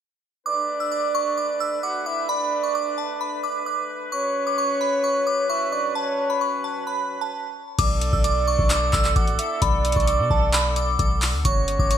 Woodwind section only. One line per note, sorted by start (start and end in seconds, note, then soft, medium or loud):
0.46 4.09 A3 medium
0.46 4.09 D4 medium
0.46 7.62 B4 medium
4.12 7.62 F#3 medium
4.12 7.62 C#4 medium
7.79 11.41 D3 medium
7.79 11.98 B3 medium
7.79 11.41 A4 medium
11.45 11.98 C#3 medium
11.45 11.98 F#4 medium